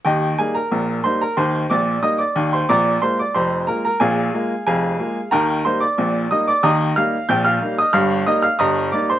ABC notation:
X:1
M:2/4
L:1/16
Q:1/4=91
K:Eb
V:1 name="Upright piano"
[Geg]2 [Aa] [Bb]3 [cc'] [Bb] | [cc']2 [dd']2 [ee'] [dd']2 [cc'] | [dbd']2 [cc'] [dd'] [cc']2 [Bb] [Bb] | [Afa]4 [Afa]4 |
[Bgb]2 [cc'] [dd']3 [ee'] [dd'] | [ebe']2 [ff']2 [gg'] [ff']2 [ee'] | [ff']2 [ee'] [ff'] [ebe']2 [dd'] [cc'] |]
V:2 name="Upright piano" clef=bass
[E,,E,]2 [G,B,E]2 [B,,,B,,]2 [G,B,E]2 | [E,,E,]2 [B,,,B,,]2 [G,B,E]2 [E,,E,]2 | [B,,,B,,]2 [A,B,F]2 [F,,,F,,]2 [A,B,F]2 | [B,,,B,,]2 [A,B,F]2 [F,,,F,,]2 [A,B,F]2 |
[E,,E,]2 [G,B,E]2 [B,,,B,,]2 [G,B,E]2 | [E,,E,]2 [G,B,E]2 [B,,,B,,]2 [G,B,E]2 | [G,,,G,,]2 [G,B,E]2 [G,,,G,,]2 [G,B,E]2 |]